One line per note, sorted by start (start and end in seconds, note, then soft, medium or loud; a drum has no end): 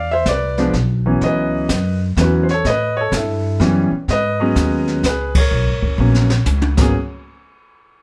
0.00 0.24 E2 medium
0.00 0.12 F5 medium
0.11 0.27 C5 medium
0.11 0.26 E5 medium
0.26 0.72 C2 medium
0.26 0.72 D5 medium
0.26 kick soft
0.26 snare medium
0.26 hi-hat pedal medium
0.31 0.73 B4 medium
0.58 0.73 F3 medium
0.58 0.72 G#3 medium
0.58 0.73 B3 medium
0.58 0.73 D4 medium
0.58 snare soft
0.73 1.20 B1 medium
0.73 kick soft
0.73 snare soft
1.06 1.66 E3 medium
1.06 1.67 F#3 medium
1.06 1.67 B3 medium
1.06 1.67 C#4 medium
1.21 1.68 C#2 medium
1.21 1.98 D#5 medium
1.21 brush sweep soft
1.21 kick soft
1.21 snare soft
1.26 1.99 B4 medium
1.69 2.16 F#2 medium
1.69 kick soft
1.69 snare medium
1.69 hi-hat pedal medium
2.17 2.63 E2 medium
2.17 2.46 E3 medium
2.17 2.46 F#3 medium
2.17 2.46 B3 medium
2.17 2.46 C#4 medium
2.17 kick soft
2.17 snare medium
2.17 hi-hat pedal medium
2.21 2.43 F#4 medium
2.21 2.44 B4 medium
2.43 2.50 C5 medium
2.49 2.66 C#5 medium
2.49 snare soft
2.54 2.67 A4 medium
2.64 3.11 A2 medium
2.64 2.98 D#5 medium
2.64 brush sweep soft
2.64 kick soft
2.64 snare soft
2.70 2.97 B4 medium
2.97 3.12 C#5 medium
3.01 3.12 A4 medium
3.12 3.59 G2 medium
3.12 3.58 A4 medium
3.12 kick soft
3.12 snare medium
3.12 hi-hat pedal medium
3.17 3.59 E4 medium
3.60 3.90 F#2 medium
3.60 3.89 E3 medium
3.60 3.89 G3 medium
3.60 3.89 B3 medium
3.60 3.90 C#4 medium
3.60 kick soft
3.60 snare soft
3.91 muted upright bass stroke soft
4.08 4.55 G#2 medium
4.08 5.01 D#5 medium
4.08 brush sweep medium
4.08 kick soft
4.08 snare soft
4.13 5.02 B4 medium
4.40 5.01 F#3 medium
4.40 5.01 G#3 medium
4.40 5.01 B3 medium
4.40 5.01 C#4 medium
4.56 5.02 D#2 medium
4.56 kick soft
4.56 snare medium
4.56 hi-hat pedal medium
4.87 snare soft
5.03 5.50 C#2 medium
5.03 5.34 B4 medium
5.03 kick soft
5.03 snare medium
5.03 hi-hat pedal medium
5.08 5.36 G#4 medium
5.35 6.76 C#5 medium
5.35 kick medium
5.35 ride medium
5.40 6.77 A#4 medium
5.51 5.68 B1 medium
5.51 brush sweep medium
5.67 5.82 G#1 soft
5.82 5.97 F#1 medium
5.82 kick medium
5.98 6.45 A#1 medium
5.98 6.28 F#3 soft
5.98 6.28 A#3 soft
5.98 6.28 B3 soft
5.98 6.28 C#4 medium
6.14 snare soft
6.30 snare medium
6.46 6.77 C#2 medium
6.46 hi-hat pedal medium
6.46 high tom medium
6.62 high tom medium
6.77 6.93 G#1 medium
6.77 6.93 F#3 medium
6.77 6.93 A#3 medium
6.77 6.93 B3 medium
6.77 6.94 C#4 medium
6.77 kick medium
6.77 snare medium
6.77 crash medium
6.81 6.95 G#4 medium